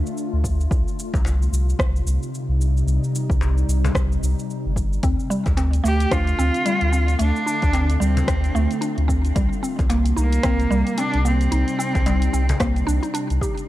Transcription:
Already playing: ambient pad D3 A3 D4 F4
0.06 shaker
0.18 shaker
0.33 sub bass D2
0.44 kick, shaker
0.61 shaker
0.71 sub bass C2, ambient pad C3, kick, shaker
0.88 shaker
0.99 shaker
1.14 sub bass C2, kick, cajon slap, shaker
1.25 cajon slap, shaker
1.42 shaker
1.52 sub bass C2, shaker
1.68 ambient pad G3, shaker
1.79 sub bass C2, ambient pad D#4, kick, cross-stick, shaker
1.96 shaker
2.06 sub bass C2, shaker
2.23 shaker
2.35 shaker
2.49 sub bass C2
2.61 shaker
2.77 shaker
2.86 sub bass C2, shaker
3.04 shaker
3.15 shaker
3.30 sub bass C2, kick, shaker
3.41 cajon slap, shaker
3.58 shaker
3.68 sub bass C2, shaker
3.85 cajon bass, shaker
3.95 sub bass C2, kick, cross-stick, cajon slap, shaker
4.12 shaker
4.23 sub bass C2, shaker
4.39 shaker
4.50 shaker
4.66 sub bass G1
4.76 kick, shaker
4.93 shaker
5.03 sub bass D2, ambient pad D3, synth pluck C4, kick, closed hi-hat, shaker
5.20 shaker
5.30 synth pluck G3, shaker
5.37 ambient pad A3
5.46 sub bass D2, kick, cajon slap, closed hi-hat, shaker
5.57 synth pluck C4, cajon slap, closed hi-hat, shaker
5.73 closed hi-hat, shaker
5.84 sub bass D2, synth pluck A3, cello G4, shaker
6.00 closed hi-hat, shaker
6.11 sub bass D2, synth pluck D4, cello F4, kick, cross-stick, closed hi-hat, shaker
6.27 closed hi-hat, shaker
6.39 sub bass D2, synth pluck C4, shaker
6.54 ambient pad D4, closed hi-hat, shaker
6.66 synth pluck G3, closed hi-hat, shaker
6.81 sub bass D2, closed hi-hat
6.93 synth pluck C4, shaker
6.98 ambient pad F4
7.08 closed hi-hat, shaker
7.19 sub bass D2, synth pluck A3, cello D4, closed hi-hat, shaker
7.36 shaker
7.46 synth pluck D4, shaker
7.62 sub bass D2, kick, closed hi-hat, shaker
7.73 synth pluck C4, cajon slap, closed hi-hat, shaker
7.90 closed hi-hat, shaker
8.00 sub bass D2, synth pluck G3, cello C4, shaker
8.17 cajon bass, closed hi-hat, shaker
8.28 sub bass D2, synth pluck C4, kick, cross-stick, cajon slap, closed hi-hat, shaker
8.44 closed hi-hat, shaker
8.55 sub bass D2, synth pluck A3, shaker
8.71 closed hi-hat, shaker
8.81 synth pluck D4, closed hi-hat, shaker
8.97 sub bass D2, closed hi-hat
9.08 synth pluck C4, kick, shaker
9.25 closed hi-hat, shaker
9.35 sub bass C2, ambient pad C3, synth pluck G3, kick, closed hi-hat, shaker
9.53 ambient pad G3, shaker
9.63 synth pluck C4, shaker
9.79 sub bass C2, kick, cajon slap, closed hi-hat, shaker
9.90 synth pluck A#3, cajon slap, closed hi-hat, shaker
10.06 closed hi-hat, shaker
10.16 sub bass C2, cello A#3, synth pluck D#4, shaker
10.33 closed hi-hat, shaker
10.43 sub bass C2, synth pluck C4, ambient pad D#4, kick, cross-stick, closed hi-hat, shaker
10.60 closed hi-hat, shaker
10.71 sub bass C2, synth pluck G3, shaker
10.87 closed hi-hat, shaker
10.98 synth pluck C4, cello D4, closed hi-hat, shaker
11.14 sub bass C2, closed hi-hat
11.25 synth pluck A#3, cello C4, shaker
11.41 closed hi-hat, shaker
11.52 sub bass C2, synth pluck D#4, closed hi-hat, shaker
11.68 closed hi-hat, shaker
11.79 synth pluck C4, shaker
11.95 sub bass C2, kick, cajon slap, closed hi-hat, shaker
12.06 synth pluck G3, cajon slap, closed hi-hat, shaker
12.22 closed hi-hat, shaker
12.33 sub bass C2, synth pluck C4, shaker
12.49 cajon bass, closed hi-hat, shaker
12.60 sub bass C2, synth pluck A#3, kick, cross-stick, cajon slap, closed hi-hat, shaker
12.76 closed hi-hat, shaker
12.87 sub bass C2, synth pluck D4, shaker
13.03 synth pluck D#4, closed hi-hat, shaker
13.14 synth pluck D4, closed hi-hat, shaker
13.30 sub bass C2, closed hi-hat, shaker
13.41 synth pluck G4, kick, shaker
13.58 closed hi-hat, shaker

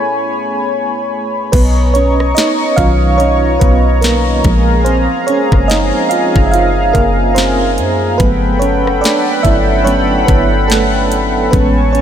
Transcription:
Already playing: fm electric piano A3 B3 C#4 E4 G#4, analog synth pad A3 C#5 G#5 B5
1.52 808-style bass B1, fm electric piano B3 B4, analog synth pad C#5 D#5 A#5 C#6, kick, closed hi-hat, crash
1.94 fm electric piano C#4 C#5, closed hi-hat
2.20 cross-stick
2.35 fm electric piano D#4 D#5, snare, closed hi-hat
2.76 808-style bass B1, fm electric piano D#3 F#3 C#4 F4 F5, kick, closed hi-hat
3.18 fm electric piano C#4 C#5, closed hi-hat
3.60 808-style bass B1, fm electric piano B3 B4, kick, closed hi-hat
4.01 fm electric piano A#3 A#4, snare, closed hi-hat
4.44 808-style bass A#1, fm electric piano F3 G#3 A#3, analog synth pad G#4 F5 G#5, kick, closed hi-hat
4.85 fm electric piano C4 C5, closed hi-hat
5.27 fm electric piano C#4 C#5, closed hi-hat
5.52 808-style bass F#1, kick, cross-stick
5.68 fm electric piano D#4 D#5, snare, closed hi-hat
6.09 fm electric piano F4 F5, closed hi-hat
6.36 808-style bass F#1, kick
6.45 fm electric piano E5
6.51 fm electric piano F4 F5, closed hi-hat
6.93 808-style bass F#1, fm electric piano A#3 A#4, kick, closed hi-hat
7.35 fm electric piano C4 C5, snare, closed hi-hat
7.78 808-style bass F#2, closed hi-hat
8.18 808-style bass G1, fm electric piano F#3 A3 B3 B4, analog synth pad A4 F#5 G5 B5, kick, closed hi-hat
8.59 fm electric piano C#4 C#5, closed hi-hat
8.86 808-style bass F#1, cross-stick
9.01 fm electric piano D4 D5, snare, closed hi-hat
9.43 808-style bass G1, fm electric piano E4 E5, kick, closed hi-hat
9.84 fm electric piano F#3 A3 B3 C#4 C#5, closed hi-hat
10.26 808-style bass G1, fm electric piano B3 B4, kick, closed hi-hat
10.68 fm electric piano A3 A4, snare, closed hi-hat
11.12 closed hi-hat
11.51 808-style bass A1, fm electric piano G#3 B3 C#4 B4, analog synth pad C#5 G#5 A5 C#6, kick, closed hi-hat
11.93 fm electric piano C#4 C#5, closed hi-hat

